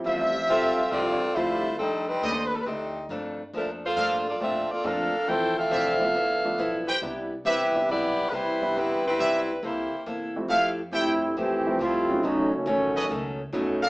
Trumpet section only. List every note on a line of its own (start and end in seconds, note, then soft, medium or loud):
0.05 1.27 F4 medium
0.05 1.27 G4 medium
0.05 1.27 C5 medium
0.05 1.27 E5 medium
2.23 2.43 G4 medium
2.23 2.43 A4 medium
2.23 2.43 D5 medium
2.23 2.43 D#5 medium
3.96 4.17 A4 medium
3.96 4.17 A#4 medium
3.96 4.17 D5 medium
3.96 4.17 F5 medium
5.71 5.91 F4 medium
5.71 5.91 C5 medium
5.71 5.91 D5 medium
5.71 5.91 E5 medium
6.88 6.97 G4 medium
6.88 6.97 B4 medium
6.88 6.97 C5 medium
6.88 6.97 G5 loud
7.45 7.65 G4 medium
7.45 7.65 B4 medium
7.45 7.65 C5 medium
7.45 7.65 E5 medium
9.18 9.38 G4 medium
9.18 9.39 B4 medium
9.18 9.38 C5 medium
9.18 9.39 E5 medium
10.49 10.69 G4 medium
10.49 10.69 A4 medium
10.49 10.69 E5 medium
10.49 10.69 F5 medium
10.92 11.12 G4 medium
10.92 11.12 A4 medium
10.92 11.12 E5 medium
10.92 11.12 G5 medium
12.95 13.05 A4 medium
12.95 13.05 B4 medium
12.95 13.05 C#5 medium
12.95 13.05 D#5 medium
13.82 13.89 A4 medium
13.82 13.89 A#4 medium
13.82 13.89 D5 medium
13.82 13.89 F5 loud